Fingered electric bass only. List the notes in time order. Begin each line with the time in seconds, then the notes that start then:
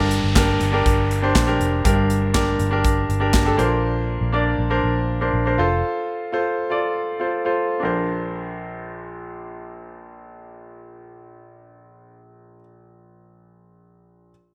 Already playing: G1
0.24 G1
0.61 G1
0.86 G1
1.35 A#1
1.60 F1
1.85 G1
2.60 G1
3.09 G1
3.59 A#1
4.21 A#1
4.58 A#1
4.84 A#1
5.33 A#1
5.58 F1